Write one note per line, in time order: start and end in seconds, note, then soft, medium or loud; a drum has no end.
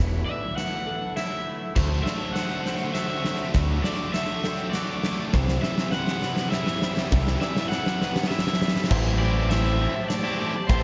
0.00 0.22 E1 medium
0.00 1.47 E2 medium
0.00 1.73 D3 medium
0.00 0.57 A3 medium
0.00 5.30 A3 medium
0.00 0.86 D4 medium
0.00 0.87 E4 medium
0.00 1.73 E4 medium
0.00 1.72 B4 medium
0.26 1.75 E3 medium
0.26 0.56 D5 medium
0.26 0.56 E5 medium
0.56 1.45 A3 medium
0.56 0.87 E5 medium
0.56 1.12 F#5 medium
0.56 snare medium
0.56 closed hi-hat medium
0.86 2.66 D4 medium
0.86 3.45 A4 medium
1.16 1.76 E4 medium
1.16 1.76 E5 medium
1.16 1.72 E5 medium
1.16 snare medium
1.16 closed hi-hat medium
1.45 2.35 A3 medium
1.76 2.00 D2 medium
1.76 2.05 D3 medium
1.76 1.83 D3 medium
1.76 5.30 D3 medium
1.76 1.85 A3 medium
1.76 5.30 C4 medium
1.76 5.30 F#4 medium
1.76 2.36 C5 medium
1.76 kick loud
1.76 snare medium
1.76 crash medium
1.83 1.90 D3 medium
1.83 1.93 A3 soft
1.90 1.98 D3 medium
1.90 1.99 A3 medium
1.99 2.06 D3 soft
1.99 2.07 A3 medium
2.03 3.54 D3 medium
2.03 2.14 D3 medium
2.03 2.33 E5 loud
2.03 snare medium
2.07 2.15 A3 medium
2.15 2.22 D3 medium
2.15 2.22 A3 medium
2.22 2.29 D3 medium
2.22 2.30 A3 medium
2.30 2.37 D3 medium
2.30 2.39 A3 medium
2.30 2.94 F#5 medium
2.36 2.45 D3 medium
2.36 3.25 A3 medium
2.36 2.46 A3 medium
2.36 3.45 C5 medium
2.36 snare medium
2.36 closed hi-hat medium
2.46 2.52 D3 medium
2.46 2.52 A3 medium
2.53 2.60 D3 medium
2.53 2.60 A3 medium
2.60 2.68 D3 medium
2.60 2.69 A3 medium
2.66 2.76 D3 medium
2.66 2.77 A3 medium
2.66 4.44 C4 medium
2.66 snare medium
2.76 2.83 D3 medium
2.76 2.85 A3 medium
2.83 2.91 D3 medium
2.83 2.92 A3 medium
2.91 2.98 D3 medium
2.91 2.99 A3 medium
2.91 3.50 E5 medium
2.91 snare medium
2.91 closed hi-hat medium
2.96 3.06 D3 medium
2.96 3.07 A3 medium
2.96 4.45 F#4 medium
3.07 3.14 D3 medium
3.07 3.15 A3 medium
3.14 3.21 D3 medium
3.14 3.22 A3 medium
3.22 3.30 D3 medium
3.22 3.30 A3 medium
3.22 snare medium
3.26 3.36 D3 medium
3.26 4.14 A3 medium
3.31 3.38 A3 medium
3.37 3.44 D3 medium
3.37 3.46 A3 medium
3.44 3.52 D3 medium
3.44 3.54 A3 medium
3.54 3.79 D2 loud
3.54 3.61 D3 medium
3.54 3.84 D3 medium
3.54 3.63 A3 medium
3.54 kick loud
3.54 snare medium
3.54 closed hi-hat medium
3.61 3.69 D3 medium
3.61 3.70 A3 medium
3.70 3.77 D3 medium
3.70 3.78 A3 medium
3.77 3.84 D3 medium
3.77 3.86 A3 medium
3.83 3.92 D3 medium
3.83 5.34 D3 medium
3.83 3.94 A3 medium
3.83 4.13 D5 medium
3.83 4.14 D5 medium
3.83 snare loud
3.92 4.00 D3 medium
3.92 4.02 A3 medium
4.01 4.08 D3 medium
4.01 4.09 A3 medium
4.09 4.15 D3 medium
4.09 4.17 A3 medium
4.13 4.24 D3 medium
4.13 5.03 A3 medium
4.13 4.70 E5 medium
4.13 4.44 E5 medium
4.13 snare medium
4.13 closed hi-hat medium
4.18 4.24 A3 medium
4.25 4.32 D3 medium
4.25 4.32 A3 medium
4.32 4.39 D3 medium
4.32 4.40 A3 medium
4.40 4.47 D3 medium
4.40 4.47 A3 medium
4.40 snare medium
4.45 4.54 D3 medium
4.45 4.56 A3 medium
4.45 6.23 C4 medium
4.45 4.74 A4 medium
4.55 4.63 D3 medium
4.55 4.63 A3 medium
4.63 4.71 D3 medium
4.63 4.70 A3 medium
4.70 4.78 D3 medium
4.70 4.78 A3 medium
4.70 5.28 D5 medium
4.70 snare medium
4.70 closed hi-hat medium
4.75 4.86 D3 medium
4.75 5.34 F#4 medium
4.75 5.34 D5 medium
4.79 4.86 A3 medium
4.87 4.94 D3 medium
4.87 4.95 A3 medium
4.95 5.01 D3 medium
4.95 5.03 A3 medium
5.02 5.09 D3 soft
5.02 5.09 A3 medium
5.02 5.34 A3 medium
5.02 snare loud
5.09 5.17 D3 medium
5.09 5.17 A3 medium
5.17 5.25 D3 soft
5.17 5.25 A3 medium
5.26 5.33 D3 medium
5.26 5.34 A3 medium
5.33 5.58 C2 loud
5.33 5.40 C3 medium
5.33 8.87 C3 medium
5.33 6.83 C3 medium
5.33 5.42 E3 loud
5.33 8.87 G3 medium
5.33 8.87 E4 medium
5.33 5.93 C5 medium
5.33 kick loud
5.33 snare medium
5.41 5.47 C3 medium
5.41 5.49 E3 medium
5.48 5.55 C3 medium
5.48 5.56 E3 medium
5.48 snare medium
5.56 5.64 C3 medium
5.56 5.64 E3 medium
5.62 5.71 C3 medium
5.62 7.42 E3 medium
5.62 5.72 E3 medium
5.62 5.92 E5 loud
5.62 snare medium
5.72 5.79 C3 medium
5.72 5.80 E3 medium
5.78 5.86 C3 medium
5.78 5.88 E3 medium
5.78 snare loud
5.87 5.94 C3 medium
5.87 5.94 E3 medium
5.92 6.01 C3 medium
5.92 6.02 E3 medium
5.92 6.82 G3 medium
5.92 7.03 C5 medium
5.92 6.50 F#5 loud
5.92 snare medium
6.02 6.09 C3 medium
6.02 6.11 E3 medium
6.07 6.17 C3 medium
6.07 6.18 E3 medium
6.07 snare medium
6.17 6.25 C3 medium
6.17 6.26 E3 medium
6.22 6.33 C3 medium
6.22 6.33 E3 medium
6.22 7.72 B3 medium
6.22 snare medium
6.33 6.41 C3 medium
6.33 6.40 E3 medium
6.33 snare medium
6.40 6.47 C3 medium
6.40 6.48 E3 medium
6.48 6.56 C3 medium
6.48 6.56 E3 medium
6.48 7.07 E5 medium
6.52 8.02 E4 medium
6.52 snare medium
6.56 6.63 C3 medium
6.56 6.64 E3 medium
6.64 6.71 C3 medium
6.64 6.71 E3 medium
6.64 snare medium
6.72 6.79 C3 medium
6.72 6.79 E3 medium
6.80 6.86 C3 medium
6.80 6.87 E3 medium
6.80 7.71 G3 medium
6.80 snare loud
6.87 6.94 C3 medium
6.87 6.95 E3 medium
6.95 7.01 C3 medium
6.95 7.02 E3 medium
6.95 snare medium
7.02 7.09 C3 medium
7.02 7.10 E3 medium
7.11 7.36 C2 loud
7.11 7.19 C3 medium
7.11 8.62 C3 medium
7.11 7.20 E3 medium
7.11 kick loud
7.11 snare loud
7.19 7.27 C3 medium
7.19 7.27 E3 medium
7.27 7.34 C3 medium
7.27 7.34 E3 medium
7.27 snare loud
7.34 7.42 C3 medium
7.34 7.43 E3 medium
7.41 7.49 C3 medium
7.41 8.91 E3 medium
7.41 7.49 E3 medium
7.41 7.71 D5 medium
7.41 7.68 E5 medium
7.41 snare loud
7.49 7.57 C3 medium
7.49 7.58 E3 medium
7.56 7.66 C3 medium
7.56 7.66 E3 medium
7.56 snare loud
7.66 7.74 C3 medium
7.66 7.74 E3 medium
7.66 8.26 F#5 loud
7.72 7.82 C3 medium
7.72 7.80 E3 medium
7.72 8.59 G3 medium
7.72 8.02 E5 medium
7.72 snare medium
7.81 7.89 C3 medium
7.81 7.89 E3 medium
7.86 7.97 C3 medium
7.86 7.96 E3 medium
7.86 snare loud
7.96 8.04 C3 medium
7.96 8.04 E3 medium
8.01 8.12 C3 medium
8.01 8.91 B3 medium
8.01 8.32 B4 medium
8.01 snare medium
8.05 8.12 E3 medium
8.12 8.20 C3 medium
8.12 8.19 E3 medium
8.12 snare loud
8.20 8.27 C3 medium
8.20 8.27 E3 medium
8.20 snare loud
8.27 8.35 C3 medium
8.27 8.36 E3 medium
8.27 8.85 E5 medium
8.27 snare loud
8.31 8.91 E4 medium
8.31 8.91 E5 medium
8.36 8.43 C3 medium
8.36 8.43 E3 medium
8.36 snare loud
8.43 8.51 C3 medium
8.43 8.50 E3 medium
8.43 snare loud
8.51 8.58 C3 medium
8.51 8.57 E3 medium
8.51 snare loud
8.58 8.66 C3 medium
8.58 8.66 E3 medium
8.58 8.91 G3 medium
8.58 snare loud
8.67 8.74 C3 medium
8.67 8.74 E3 medium
8.67 snare loud
8.74 8.82 C3 medium
8.74 8.82 E3 medium
8.74 snare loud
8.83 8.90 C3 medium
8.83 8.91 E3 medium
8.83 snare loud
8.89 9.86 A1 loud
8.89 9.50 A2 loud
8.89 9.21 E3 loud
8.89 9.21 A3 loud
8.89 9.22 C4 loud
8.89 9.23 E4 loud
8.89 10.83 G4 medium
8.89 10.83 C5 medium
8.89 9.51 C5 medium
8.89 10.83 E5 medium
8.89 10.83 A5 medium
8.89 kick loud
8.89 crash loud
9.19 9.51 E3 medium
9.19 9.38 A3 medium
9.19 9.36 C4 medium
9.19 9.35 E4 medium
9.19 9.48 D5 loud
9.36 9.51 A3 medium
9.36 9.52 C4 medium
9.36 9.52 E4 medium
9.50 10.25 A2 medium
9.50 9.95 E3 medium
9.50 9.95 A3 loud
9.50 9.94 C4 medium
9.50 9.94 E4 medium
9.50 10.10 C5 medium
9.50 10.09 E5 loud
9.50 snare medium
9.50 closed hi-hat medium
9.79 9.95 E3 medium
9.79 9.95 A3 medium
9.79 9.94 C4 medium
9.79 9.94 E4 medium
9.94 muted overdriven electric guitar stroke medium
9.94 muted distorted electric guitar stroke medium
10.09 10.71 D5 medium
10.09 snare medium
10.09 closed hi-hat medium
10.25 10.40 A3 medium
10.25 10.40 C4 medium
10.25 10.41 E4 medium
10.39 10.55 E3 medium
10.39 10.56 A3 medium
10.39 10.54 C4 medium
10.39 10.54 E4 medium
10.55 muted distorted electric guitar stroke medium
10.55 muted overdriven electric guitar stroke medium
10.67 10.83 A1 loud
10.67 10.83 A2 medium
10.67 10.83 E3 loud
10.67 10.83 A3 loud
10.67 10.83 C5 medium
10.67 kick loud
10.67 closed hi-hat medium
10.71 10.83 C4 loud
10.71 10.83 E4 loud